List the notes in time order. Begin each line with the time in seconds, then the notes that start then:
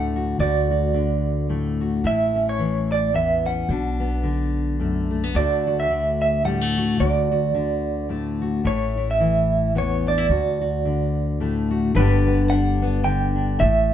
Already playing: D2 A2 D3 A3 F#4 F#5
0.16 F#4
0.39 D2 F#4 D5
0.71 F#4
0.94 D3
1.49 A2 A3
1.81 F#4
2.04 A1 A2 E4 E5
2.35 C#4
2.49 C#5
2.59 E3
2.92 D5
3.13 E2 B3 E5
3.46 C#4 F#5
3.69 B1 B2 D4
4.00 B3
4.23 D3
4.79 F#2 A3
5.11 A3
5.24 B3
5.34 D2 D3 A3 F#4 D5
5.67 F#4
5.80 E5
5.90 D3
6.22 E5
6.44 A2 G3 F#5
6.61 A3
6.77 F#4
7.00 D2 F#4 D5
7.32 F#4
7.55 D3
8.09 A2 A3
8.42 F#4
8.64 A1 A2 E4 C#5
8.97 E4
9.11 E5
9.20 E3
9.75 E2 B3 C#5
10.06 D4 D5
10.18 E4
10.29 D2 F#4
10.61 F#4
10.85 D3
11.40 A2 A3
11.71 F#4
11.95 G1 G2 D3 B3 D4 G4 B4
12.27 B3
12.50 D4 F#5
12.82 B3
13.04 D3 G5
13.36 D4
13.59 A1 A2 E5